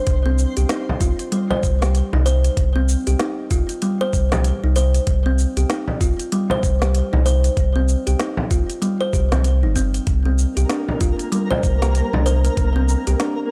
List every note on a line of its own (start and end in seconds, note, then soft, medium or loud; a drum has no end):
0.07 0.45 C2 loud
0.07 kick loud
0.07 closed hi-hat medium
0.07 shaker soft
0.26 0.55 C4 loud
0.39 shaker medium
0.57 0.65 C2 medium
0.57 0.68 G4 medium
0.57 closed hi-hat soft
0.57 shaker soft
0.69 1.00 D#4 medium
0.69 snare medium
0.69 closed hi-hat medium
0.69 shaker soft
0.89 frame drum medium
1.01 1.12 C2 medium
1.01 1.18 F4 medium
1.01 kick loud
1.01 closed hi-hat medium
1.01 shaker medium
1.19 closed hi-hat soft
1.19 shaker soft
1.32 1.49 G3 loud
1.32 closed hi-hat medium
1.32 shaker soft
1.50 1.80 C5 medium
1.50 frame drum medium
1.63 2.02 C2 loud
1.63 kick loud
1.63 shaker medium
1.82 2.11 G4 medium
1.82 snare medium
1.82 closed hi-hat soft
1.82 shaker soft
1.95 closed hi-hat medium
1.95 shaker soft
2.13 2.49 C2 loud
2.13 2.20 D#4 medium
2.13 frame drum medium
2.26 2.74 C5 loud
2.26 closed hi-hat soft
2.26 shaker medium
2.44 closed hi-hat soft
2.44 shaker soft
2.57 2.95 C2 loud
2.57 kick loud
2.57 closed hi-hat medium
2.57 shaker soft
2.76 3.05 C4 loud
2.89 shaker medium
3.07 3.15 C2 medium
3.07 3.18 G4 medium
3.07 closed hi-hat soft
3.07 shaker soft
3.19 3.50 D#4 medium
3.19 snare medium
3.19 closed hi-hat medium
3.19 shaker soft
3.51 3.62 C2 medium
3.51 3.69 F4 medium
3.51 kick loud
3.51 closed hi-hat soft
3.51 shaker medium
3.69 closed hi-hat soft
3.69 shaker soft
3.82 3.99 G3 medium
3.82 closed hi-hat medium
3.82 shaker soft
4.01 4.30 C5 loud
4.13 4.52 C2 loud
4.13 kick loud
4.13 shaker medium
4.32 4.62 G4 medium
4.32 snare medium
4.32 closed hi-hat soft
4.32 frame drum loud
4.32 shaker soft
4.44 closed hi-hat medium
4.44 shaker soft
4.63 4.99 C2 medium
4.63 4.71 D#4 medium
4.76 5.24 C5 loud
4.76 closed hi-hat soft
4.76 shaker medium
4.95 closed hi-hat soft
4.95 shaker soft
5.07 5.45 C2 loud
5.07 kick loud
5.07 closed hi-hat medium
5.07 shaker soft
5.26 5.55 C4 loud
5.39 shaker medium
5.57 5.65 C2 medium
5.57 5.68 G4 medium
5.57 closed hi-hat soft
5.57 shaker soft
5.70 6.00 D#4 medium
5.70 snare medium
5.70 closed hi-hat medium
5.70 shaker soft
5.88 frame drum medium
6.01 6.12 C2 medium
6.01 6.19 F4 medium
6.01 kick loud
6.01 closed hi-hat soft
6.01 shaker medium
6.19 closed hi-hat soft
6.19 shaker soft
6.32 6.49 G3 loud
6.32 closed hi-hat medium
6.32 shaker soft
6.50 6.80 C5 loud
6.50 frame drum medium
6.63 7.02 C2 loud
6.63 kick loud
6.63 shaker medium
6.82 7.11 G4 medium
6.82 snare medium
6.82 closed hi-hat soft
6.82 shaker soft
6.95 closed hi-hat medium
6.95 shaker soft
7.13 7.49 C2 loud
7.13 7.20 D#4 medium
7.13 frame drum medium
7.26 7.74 C5 medium
7.26 closed hi-hat soft
7.26 shaker medium
7.44 closed hi-hat soft
7.44 shaker soft
7.57 7.95 C2 loud
7.57 kick loud
7.57 closed hi-hat medium
7.57 shaker soft
7.76 8.05 C4 loud
7.89 shaker medium
8.07 8.15 C2 medium
8.07 8.18 G4 medium
8.07 closed hi-hat soft
8.07 shaker soft
8.19 8.50 D#4 medium
8.19 snare medium
8.19 closed hi-hat medium
8.19 shaker soft
8.37 frame drum medium
8.51 8.62 C2 medium
8.51 8.68 F4 medium
8.51 kick loud
8.51 closed hi-hat medium
8.51 shaker medium
8.70 closed hi-hat soft
8.70 shaker soft
8.82 8.99 G3 loud
8.82 closed hi-hat medium
8.82 shaker soft
9.01 9.12 C5 loud
9.13 9.65 C2 loud
9.13 9.31 G4 medium
9.13 kick loud
9.13 shaker medium
9.32 9.44 C4 medium
9.32 snare medium
9.32 closed hi-hat soft
9.32 frame drum medium
9.32 shaker soft
9.44 closed hi-hat soft
9.44 shaker soft
9.63 9.99 G1 medium
9.63 9.75 D#4 medium
9.76 9.93 C4 loud
9.76 kick medium
9.76 closed hi-hat soft
9.76 shaker medium
9.94 closed hi-hat soft
9.94 shaker soft
10.06 10.45 C2 loud
10.06 13.51 A#3 medium
10.06 13.51 A#4 medium
10.06 kick loud
10.06 closed hi-hat medium
10.06 shaker soft
10.25 10.55 C4 loud
10.39 shaker medium
10.57 10.65 C2 medium
10.57 10.68 G4 medium
10.57 closed hi-hat soft
10.57 shaker soft
10.69 11.00 D4 medium
10.69 snare medium
10.69 closed hi-hat medium
10.69 shaker soft
10.88 frame drum medium
11.01 11.12 C2 medium
11.01 11.18 F4 medium
11.01 kick loud
11.01 closed hi-hat soft
11.01 shaker medium
11.19 closed hi-hat soft
11.19 shaker soft
11.32 11.49 G3 loud
11.32 closed hi-hat medium
11.32 shaker soft
11.51 11.80 C5 loud
11.51 frame drum medium
11.63 12.02 C2 loud
11.63 kick loud
11.63 shaker medium
11.82 12.11 G4 medium
11.82 snare medium
11.82 closed hi-hat soft
11.82 shaker soft
11.95 closed hi-hat soft
11.95 shaker soft
12.13 12.49 C2 loud
12.13 12.21 D4 medium
12.13 frame drum medium
12.26 12.74 C5 loud
12.26 closed hi-hat soft
12.26 shaker medium
12.45 closed hi-hat soft
12.45 shaker soft
12.57 12.95 C2 loud
12.57 kick loud
12.57 closed hi-hat medium
12.57 shaker soft
12.76 13.05 C4 loud
12.89 shaker medium
13.07 13.15 C2 medium
13.07 13.19 G4 medium
13.07 closed hi-hat soft
13.07 shaker soft
13.20 13.50 D4 medium
13.20 snare medium
13.20 closed hi-hat medium
13.20 shaker soft